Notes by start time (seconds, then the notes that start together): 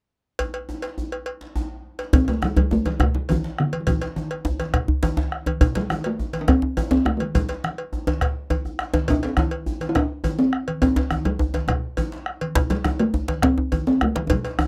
0.39 cowbell, djembe slap, djembe bass
0.54 cowbell, djembe slap
0.69 djembe tone
0.82 cowbell, djembe slap
0.98 djembe bass
1.12 cowbell
1.26 cowbell, djembe slap
1.41 djembe slap
1.56 djembe tone, djembe bass
1.99 cowbell, djembe slap
2.13 C4, bombo low, cowbell, high conga, djembe bass, low conga
2.25 C4, cowbell, djembe slap, djembe tone, high conga
2.30 A3
2.42 G3, bombo rim, djembe tone, high conga
2.57 G3, cowbell, djembe bass
2.71 A3, djembe slap, djembe tone, high conga, djembe bass
2.85 G3, cowbell, djembe slap, djembe tone, high conga
3.00 A3, bombo rim, bombo low, cowbell, high conga, djembe bass, low conga
3.15 G3, djembe tone
3.29 E3, cowbell, high conga, djembe tone, djembe bass
3.44 djembe slap
3.58 D3, bombo rim
3.73 cowbell, high conga
3.81 G3
3.87 E3, bombo low, cowbell, high conga, low conga, djembe bass
4.02 cowbell, djembe slap, high conga
4.16 djembe tone, high conga
4.31 cowbell
4.45 djembe slap, djembe tone, djembe bass
4.60 cowbell, djembe slap, high conga
4.74 bombo rim, bombo low, cowbell, djembe tone, high conga, low conga
4.88 djembe bass
5.03 cowbell, djembe slap, djembe tone, high conga, djembe bass
5.17 djembe slap, djembe tone
5.32 bombo rim
5.46 cowbell, djembe tone, high conga
5.61 bombo low, cowbell, high conga, djembe bass, low conga
5.75 G3, cowbell, djembe slap, high conga
5.90 G3, bombo rim, high conga, djembe tone
6.04 A3, cowbell
6.19 djembe slap, high conga, djembe bass
6.33 cowbell, djembe slap, high conga
6.41 D4
6.48 C4, bombo rim, bombo low, cowbell, high conga, djembe tone, low conga
6.62 djembe tone
6.77 cowbell, high conga, djembe tone, djembe bass
6.91 C4, djembe slap, djembe tone
7.05 A3, bombo rim, djembe tone
7.17 G3 A3, cowbell, high conga
7.35 G3, bombo low, cowbell, djembe bass, low conga
7.49 cowbell, djembe slap, high conga
7.64 bombo rim, djembe slap, high conga
7.78 bombo rim, cowbell
7.93 bombo rim, djembe slap, djembe bass
8.07 bombo rim, cowbell, djembe slap, high conga, djembe tone
8.21 bombo rim, bombo low, cowbell, djembe slap, high conga, low conga
8.50 cowbell, djembe tone, high conga, djembe bass
8.65 bombo rim, high conga, djembe bass
8.79 bombo rim, djembe slap
8.94 bombo rim, cowbell, djembe slap, djembe tone, high conga
9.08 D4, bombo low, cowbell, high conga, djembe bass, low conga
9.23 C4, cowbell, djembe slap
9.37 E4, bombo rim, djembe tone, high conga
9.51 cowbell
9.66 high conga, djembe bass
9.81 cowbell, djembe slap, high conga
9.89 E4
9.95 D4, bombo rim, bombo low, cowbell, high conga, low conga
10.24 cowbell, djembe tone, high conga, djembe bass
10.39 C4, djembe slap
10.53 bombo rim
10.68 cowbell, high conga
10.82 C4, bombo low, cowbell, high conga, djembe bass, low conga
10.96 cowbell, djembe slap, djembe tone, high conga
11.11 bombo rim, djembe tone, high conga
11.25 G3, cowbell, djembe tone
11.39 djembe slap, djembe tone, high conga, djembe bass
11.54 cowbell, djembe slap, djembe tone, high conga
11.68 G3, bombo rim, bombo low, cowbell, djembe tone, high conga, low conga
11.97 cowbell, djembe tone, high conga, djembe bass
12.12 djembe slap
12.26 bombo rim
12.41 cowbell, high conga
12.55 bombo low, cowbell, djembe slap, high conga, djembe bass, low conga
12.70 G3, cowbell, djembe slap, djembe tone, high conga
12.84 G3, bombo rim, djembe tone, high conga
12.99 A3, cowbell
13.14 djembe slap, djembe tone, high conga, djembe bass
13.28 cowbell, djembe slap, high conga
13.42 C4, bombo rim, bombo low, cowbell, djembe slap, high conga, low conga
13.58 djembe tone
13.72 cowbell, djembe tone, high conga, djembe bass
13.87 C4, djembe slap
14.01 A3, bombo rim, djembe tone
14.16 G3, cowbell, djembe slap, high conga
14.30 G3, bombo low, cowbell, djembe slap, djembe tone, high conga, djembe bass, low conga
14.45 bombo rim, cowbell, djembe slap
14.59 bombo rim, djembe tone, high conga